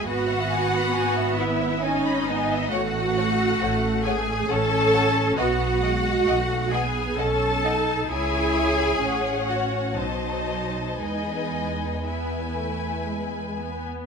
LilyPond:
<<
  \new Staff \with { instrumentName = "Violin section" } { \time 3/4 \key e \major \tempo 4 = 66 fis''4. e''8 dis''4 | fis''4. gis''8 a''4 | fis''4. gis''8 a''4 | gis''4. fis''8 dis''4 |
dis''4 e''4. r8 | }
  \new Staff \with { instrumentName = "Violin section" } { \time 3/4 \key e \major << { r2. | fis''8 fis''8 fis''8 fis''8 fis''8 fis''8 | fis''8 fis''8 fis''8 fis''8 fis''8 fis''8 | e''4 fis''4 a''4 |
gis''4 gis''2 | } \\ { b'16 e''16 gis''16 b''16 gis''16 e''16 b'16 e''16 gis''16 b''16 gis''16 e''16 | cis''8 cis''8 cis''8 cis''8 cis''8 cis''8 | dis''8 dis''8 dis''8 dis''8 dis''8 dis''8 | cis''4 cis''4 c''4 |
b'4 b'4.~ b'16 r16 | } >> }
  \new Staff \with { instrumentName = "Cello section" } { \time 3/4 \key e \major fis'4. e'8 dis'4 | fis'4. gis'8 a'4 | fis'4. gis'8 a'4 | gis'4. fis'8 dis'4 |
dis'4 e'4. r8 | }
  \new Staff \with { instrumentName = "Viola section" } { \time 3/4 \key e \major b2 cis'8 b8 | a2 cis'4 | b8 gis8 a8 b8 cis'8 dis'8 | e'4 cis'4 fis4 |
gis4 b8 a8 gis8 b8 | }
  \new Staff \with { instrumentName = "Double bass section" } { \clef bass \time 3/4 \key e \major gis,,2. | a,,4 a,,4 a,,4 | b,,4 b,,4 b,,4 | cis,4 a,,4 b,,4 |
e,2. | }
>>